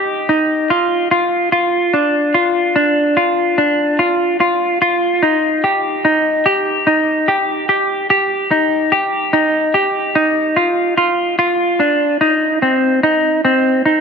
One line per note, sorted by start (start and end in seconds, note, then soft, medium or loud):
0.00 0.29 G4 medium
0.29 0.70 D#4 medium
0.70 1.10 F4 medium
1.11 1.51 F4 medium
1.52 1.93 F4 medium
1.94 2.35 D4 medium
2.34 2.76 F4 medium
2.76 3.17 D4 medium
3.17 3.58 F4 medium
3.58 3.99 D4 medium
3.99 4.39 F4 medium
4.40 4.80 F4 medium
4.82 5.23 F4 medium
5.23 5.64 D#4 medium
5.64 6.05 G4 medium
6.05 6.46 D#4 medium
6.46 6.87 G4 medium
6.87 7.28 D#4 medium
7.28 7.68 G4 medium
7.69 8.09 G4 medium
8.10 8.51 G4 medium
8.51 8.92 D#4 medium
8.92 9.33 G4 medium
9.33 9.74 D#4 medium
9.74 10.15 G4 medium
10.15 10.57 D#4 medium
10.57 10.96 F4 medium
10.98 11.37 F4 medium
11.39 11.80 F4 medium
11.80 12.21 D4 medium
12.21 12.62 D#4 medium
12.62 13.03 C4 medium
13.03 13.44 D#4 medium
13.45 13.85 C4 medium
13.86 14.01 D#4 medium